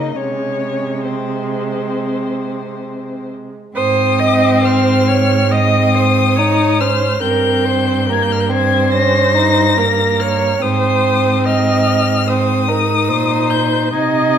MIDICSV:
0, 0, Header, 1, 5, 480
1, 0, Start_track
1, 0, Key_signature, -4, "major"
1, 0, Tempo, 896861
1, 90, Time_signature, 4, 2, 24, 8
1, 2011, Tempo, 870827
1, 3451, Tempo, 849858
1, 5851, Tempo, 823045
1, 8045, End_track
2, 0, Start_track
2, 0, Title_t, "Violin"
2, 0, Program_c, 0, 40
2, 0, Note_on_c, 0, 75, 69
2, 86, Note_on_c, 0, 73, 77
2, 94, Note_off_c, 0, 75, 0
2, 560, Note_on_c, 0, 72, 67
2, 568, Note_off_c, 0, 73, 0
2, 1765, Note_off_c, 0, 72, 0
2, 2012, Note_on_c, 0, 87, 122
2, 2501, Note_on_c, 0, 89, 117
2, 2509, Note_off_c, 0, 87, 0
2, 2984, Note_on_c, 0, 87, 127
2, 2993, Note_off_c, 0, 89, 0
2, 3698, Note_on_c, 0, 89, 108
2, 3706, Note_off_c, 0, 87, 0
2, 3928, Note_on_c, 0, 91, 98
2, 3936, Note_off_c, 0, 89, 0
2, 4442, Note_on_c, 0, 92, 102
2, 4451, Note_off_c, 0, 91, 0
2, 4497, Note_on_c, 0, 91, 100
2, 4506, Note_off_c, 0, 92, 0
2, 4552, Note_on_c, 0, 89, 103
2, 4561, Note_off_c, 0, 91, 0
2, 4599, Note_on_c, 0, 91, 88
2, 4608, Note_off_c, 0, 89, 0
2, 4654, Note_on_c, 0, 92, 101
2, 4663, Note_off_c, 0, 91, 0
2, 4890, Note_off_c, 0, 92, 0
2, 4893, Note_on_c, 0, 94, 127
2, 5611, Note_on_c, 0, 89, 108
2, 5619, Note_off_c, 0, 94, 0
2, 5851, Note_on_c, 0, 87, 110
2, 5860, Note_off_c, 0, 89, 0
2, 6337, Note_off_c, 0, 87, 0
2, 6341, Note_on_c, 0, 89, 116
2, 6820, Note_on_c, 0, 87, 127
2, 6828, Note_off_c, 0, 89, 0
2, 7533, Note_on_c, 0, 91, 104
2, 7542, Note_off_c, 0, 87, 0
2, 7778, Note_on_c, 0, 92, 86
2, 7787, Note_off_c, 0, 91, 0
2, 8045, Note_off_c, 0, 92, 0
2, 8045, End_track
3, 0, Start_track
3, 0, Title_t, "Viola"
3, 0, Program_c, 1, 41
3, 0, Note_on_c, 1, 58, 48
3, 82, Note_on_c, 1, 56, 64
3, 90, Note_off_c, 1, 58, 0
3, 1895, Note_off_c, 1, 56, 0
3, 2008, Note_on_c, 1, 72, 113
3, 2253, Note_on_c, 1, 75, 109
3, 2261, Note_off_c, 1, 72, 0
3, 2491, Note_off_c, 1, 75, 0
3, 2494, Note_on_c, 1, 72, 104
3, 2741, Note_on_c, 1, 73, 104
3, 2749, Note_off_c, 1, 72, 0
3, 2979, Note_on_c, 1, 75, 106
3, 2988, Note_off_c, 1, 73, 0
3, 3219, Note_on_c, 1, 72, 90
3, 3227, Note_off_c, 1, 75, 0
3, 3450, Note_on_c, 1, 73, 84
3, 3459, Note_off_c, 1, 72, 0
3, 3695, Note_on_c, 1, 72, 94
3, 3704, Note_off_c, 1, 73, 0
3, 3926, Note_off_c, 1, 72, 0
3, 3930, Note_on_c, 1, 70, 103
3, 4173, Note_on_c, 1, 72, 97
3, 4182, Note_off_c, 1, 70, 0
3, 4412, Note_off_c, 1, 72, 0
3, 4420, Note_on_c, 1, 70, 88
3, 4656, Note_on_c, 1, 72, 98
3, 4665, Note_off_c, 1, 70, 0
3, 5378, Note_on_c, 1, 70, 86
3, 5387, Note_off_c, 1, 72, 0
3, 5619, Note_on_c, 1, 73, 91
3, 5627, Note_off_c, 1, 70, 0
3, 5856, Note_on_c, 1, 72, 108
3, 5865, Note_off_c, 1, 73, 0
3, 6336, Note_on_c, 1, 75, 100
3, 6345, Note_off_c, 1, 72, 0
3, 6818, Note_off_c, 1, 75, 0
3, 6822, Note_on_c, 1, 72, 90
3, 7058, Note_on_c, 1, 70, 77
3, 7066, Note_off_c, 1, 72, 0
3, 7291, Note_on_c, 1, 72, 88
3, 7299, Note_off_c, 1, 70, 0
3, 7770, Note_off_c, 1, 72, 0
3, 7780, Note_on_c, 1, 75, 101
3, 8045, Note_off_c, 1, 75, 0
3, 8045, End_track
4, 0, Start_track
4, 0, Title_t, "Violin"
4, 0, Program_c, 2, 40
4, 0, Note_on_c, 2, 63, 58
4, 82, Note_off_c, 2, 63, 0
4, 85, Note_on_c, 2, 61, 72
4, 562, Note_on_c, 2, 60, 52
4, 570, Note_off_c, 2, 61, 0
4, 1766, Note_off_c, 2, 60, 0
4, 2003, Note_on_c, 2, 60, 95
4, 2951, Note_off_c, 2, 60, 0
4, 2972, Note_on_c, 2, 60, 79
4, 3460, Note_on_c, 2, 63, 90
4, 3468, Note_off_c, 2, 60, 0
4, 3698, Note_on_c, 2, 61, 77
4, 3706, Note_off_c, 2, 63, 0
4, 3932, Note_off_c, 2, 61, 0
4, 3935, Note_on_c, 2, 60, 78
4, 4422, Note_on_c, 2, 58, 83
4, 4430, Note_off_c, 2, 60, 0
4, 4650, Note_on_c, 2, 60, 77
4, 4659, Note_off_c, 2, 58, 0
4, 4896, Note_on_c, 2, 61, 78
4, 4904, Note_off_c, 2, 60, 0
4, 5132, Note_on_c, 2, 63, 83
4, 5140, Note_off_c, 2, 61, 0
4, 5372, Note_on_c, 2, 58, 75
4, 5380, Note_off_c, 2, 63, 0
4, 5841, Note_off_c, 2, 58, 0
4, 5844, Note_on_c, 2, 60, 83
4, 6795, Note_off_c, 2, 60, 0
4, 6826, Note_on_c, 2, 60, 79
4, 7053, Note_on_c, 2, 63, 71
4, 7062, Note_off_c, 2, 60, 0
4, 7769, Note_off_c, 2, 63, 0
4, 7778, Note_on_c, 2, 63, 83
4, 8045, Note_off_c, 2, 63, 0
4, 8045, End_track
5, 0, Start_track
5, 0, Title_t, "Cello"
5, 0, Program_c, 3, 42
5, 0, Note_on_c, 3, 49, 63
5, 87, Note_on_c, 3, 48, 55
5, 95, Note_off_c, 3, 49, 0
5, 1897, Note_off_c, 3, 48, 0
5, 2012, Note_on_c, 3, 44, 89
5, 3909, Note_off_c, 3, 44, 0
5, 3933, Note_on_c, 3, 43, 90
5, 5830, Note_off_c, 3, 43, 0
5, 5856, Note_on_c, 3, 44, 82
5, 7294, Note_on_c, 3, 46, 75
5, 7303, Note_off_c, 3, 44, 0
5, 7771, Note_on_c, 3, 48, 85
5, 7779, Note_off_c, 3, 46, 0
5, 8045, Note_off_c, 3, 48, 0
5, 8045, End_track
0, 0, End_of_file